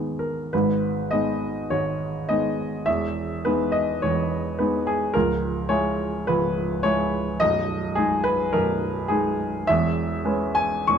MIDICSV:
0, 0, Header, 1, 2, 480
1, 0, Start_track
1, 0, Key_signature, 5, "minor"
1, 0, Tempo, 700117
1, 362, Time_signature, 4, 2, 24, 8
1, 362, Tempo, 588813
1, 1802, Tempo, 574163
1, 3722, Tempo, 561798
1, 7082, Tempo, 574163
1, 8522, Tempo, 613497
1, 9096, End_track
2, 0, Start_track
2, 0, Title_t, "Grand piano"
2, 0, Program_c, 0, 0
2, 0, Control_c, 0, 64, 127
2, 0, Note_on_c, 0, 39, 26
2, 0, Note_on_c, 0, 56, 22
2, 0, Note_on_c, 0, 59, 21
2, 0, Note_on_c, 0, 63, 25
2, 0, Note_on_c, 0, 68, 46
2, 131, Note_on_c, 0, 70, 42
2, 132, Note_off_c, 0, 68, 0
2, 338, Note_off_c, 0, 56, 0
2, 339, Note_off_c, 0, 59, 0
2, 341, Note_off_c, 0, 63, 0
2, 362, Note_off_c, 0, 70, 0
2, 363, Note_on_c, 0, 71, 53
2, 373, Control_c, 0, 64, 0
2, 373, Note_on_c, 0, 32, 37
2, 377, Note_on_c, 0, 44, 40
2, 380, Note_off_c, 0, 39, 0
2, 483, Control_c, 0, 64, 127
2, 834, Note_on_c, 0, 75, 65
2, 844, Note_off_c, 0, 71, 0
2, 848, Note_on_c, 0, 56, 32
2, 850, Note_on_c, 0, 59, 29
2, 852, Note_on_c, 0, 63, 33
2, 1297, Note_off_c, 0, 56, 0
2, 1298, Note_off_c, 0, 59, 0
2, 1299, Note_off_c, 0, 63, 0
2, 1304, Note_off_c, 0, 32, 0
2, 1306, Note_off_c, 0, 44, 0
2, 1321, Note_on_c, 0, 73, 54
2, 1322, Note_off_c, 0, 75, 0
2, 1328, Note_on_c, 0, 32, 32
2, 1330, Note_on_c, 0, 44, 34
2, 1795, Note_on_c, 0, 75, 60
2, 1799, Note_off_c, 0, 73, 0
2, 1802, Note_on_c, 0, 59, 29
2, 1803, Note_on_c, 0, 56, 29
2, 1806, Note_on_c, 0, 63, 31
2, 2249, Note_off_c, 0, 59, 0
2, 2250, Note_off_c, 0, 56, 0
2, 2251, Note_off_c, 0, 63, 0
2, 2254, Note_off_c, 0, 32, 0
2, 2255, Note_off_c, 0, 44, 0
2, 2273, Note_on_c, 0, 76, 67
2, 2279, Note_off_c, 0, 75, 0
2, 2282, Note_on_c, 0, 40, 43
2, 2284, Note_on_c, 0, 28, 38
2, 2296, Control_c, 0, 64, 0
2, 2410, Control_c, 0, 64, 127
2, 2762, Note_off_c, 0, 76, 0
2, 2767, Note_on_c, 0, 71, 63
2, 2776, Note_on_c, 0, 59, 31
2, 2779, Note_on_c, 0, 56, 32
2, 2779, Note_on_c, 0, 63, 33
2, 2992, Note_on_c, 0, 75, 63
2, 3006, Note_off_c, 0, 71, 0
2, 3218, Note_off_c, 0, 40, 0
2, 3219, Note_off_c, 0, 28, 0
2, 3219, Note_off_c, 0, 59, 0
2, 3220, Note_off_c, 0, 56, 0
2, 3220, Note_off_c, 0, 63, 0
2, 3240, Note_off_c, 0, 75, 0
2, 3246, Note_on_c, 0, 73, 60
2, 3253, Note_on_c, 0, 28, 37
2, 3259, Note_on_c, 0, 40, 36
2, 3718, Note_on_c, 0, 71, 59
2, 3722, Note_off_c, 0, 73, 0
2, 3727, Note_on_c, 0, 59, 32
2, 3729, Note_on_c, 0, 56, 31
2, 3732, Note_on_c, 0, 63, 33
2, 3958, Note_off_c, 0, 71, 0
2, 3958, Note_on_c, 0, 68, 59
2, 4164, Note_off_c, 0, 59, 0
2, 4165, Note_off_c, 0, 56, 0
2, 4167, Note_off_c, 0, 63, 0
2, 4170, Note_off_c, 0, 28, 0
2, 4173, Note_off_c, 0, 40, 0
2, 4187, Note_on_c, 0, 70, 69
2, 4195, Note_off_c, 0, 68, 0
2, 4198, Note_on_c, 0, 37, 44
2, 4203, Note_on_c, 0, 25, 42
2, 4210, Control_c, 0, 64, 0
2, 4318, Control_c, 0, 64, 127
2, 4660, Note_on_c, 0, 73, 67
2, 4664, Note_off_c, 0, 70, 0
2, 4665, Note_on_c, 0, 56, 35
2, 4668, Note_on_c, 0, 64, 34
2, 4672, Note_on_c, 0, 68, 38
2, 5123, Note_off_c, 0, 56, 0
2, 5125, Note_off_c, 0, 64, 0
2, 5127, Note_off_c, 0, 68, 0
2, 5132, Note_off_c, 0, 37, 0
2, 5134, Note_off_c, 0, 25, 0
2, 5155, Note_off_c, 0, 73, 0
2, 5158, Note_on_c, 0, 71, 67
2, 5165, Note_on_c, 0, 25, 42
2, 5165, Note_on_c, 0, 37, 40
2, 5636, Note_on_c, 0, 73, 71
2, 5640, Note_on_c, 0, 56, 33
2, 5645, Note_off_c, 0, 71, 0
2, 5646, Note_on_c, 0, 64, 35
2, 5653, Note_on_c, 0, 68, 37
2, 6083, Note_off_c, 0, 56, 0
2, 6086, Note_off_c, 0, 64, 0
2, 6089, Note_off_c, 0, 68, 0
2, 6094, Note_off_c, 0, 25, 0
2, 6094, Note_off_c, 0, 37, 0
2, 6115, Note_off_c, 0, 73, 0
2, 6120, Note_on_c, 0, 75, 82
2, 6126, Note_on_c, 0, 23, 48
2, 6126, Note_on_c, 0, 35, 51
2, 6132, Control_c, 0, 64, 0
2, 6254, Control_c, 0, 64, 127
2, 6595, Note_on_c, 0, 68, 68
2, 6602, Note_off_c, 0, 75, 0
2, 6607, Note_on_c, 0, 56, 37
2, 6614, Note_on_c, 0, 63, 38
2, 6837, Note_off_c, 0, 68, 0
2, 6837, Note_on_c, 0, 71, 74
2, 7051, Note_off_c, 0, 56, 0
2, 7054, Note_off_c, 0, 63, 0
2, 7057, Note_off_c, 0, 23, 0
2, 7057, Note_off_c, 0, 35, 0
2, 7080, Note_off_c, 0, 71, 0
2, 7085, Note_on_c, 0, 70, 68
2, 7092, Note_on_c, 0, 23, 42
2, 7092, Note_on_c, 0, 35, 44
2, 7549, Note_on_c, 0, 68, 61
2, 7560, Note_on_c, 0, 56, 37
2, 7564, Note_on_c, 0, 63, 36
2, 7565, Note_off_c, 0, 70, 0
2, 7796, Note_off_c, 0, 68, 0
2, 8008, Note_off_c, 0, 56, 0
2, 8010, Note_off_c, 0, 63, 0
2, 8019, Note_off_c, 0, 23, 0
2, 8019, Note_off_c, 0, 35, 0
2, 8044, Note_on_c, 0, 76, 76
2, 8055, Note_on_c, 0, 40, 54
2, 8058, Control_c, 0, 64, 0
2, 8060, Note_on_c, 0, 28, 50
2, 8195, Control_c, 0, 64, 127
2, 8524, Note_on_c, 0, 56, 39
2, 8527, Note_on_c, 0, 61, 40
2, 8529, Note_on_c, 0, 71, 41
2, 8757, Note_on_c, 0, 80, 75
2, 8761, Note_off_c, 0, 76, 0
2, 8974, Note_off_c, 0, 56, 0
2, 8976, Note_off_c, 0, 61, 0
2, 8977, Note_off_c, 0, 71, 0
2, 8983, Note_off_c, 0, 40, 0
2, 8985, Note_off_c, 0, 28, 0
2, 9003, Note_off_c, 0, 80, 0
2, 9013, Note_on_c, 0, 85, 73
2, 9020, Note_on_c, 0, 40, 39
2, 9022, Note_on_c, 0, 28, 44
2, 9096, Note_off_c, 0, 28, 0
2, 9096, Note_off_c, 0, 40, 0
2, 9096, Note_off_c, 0, 85, 0
2, 9096, End_track
0, 0, End_of_file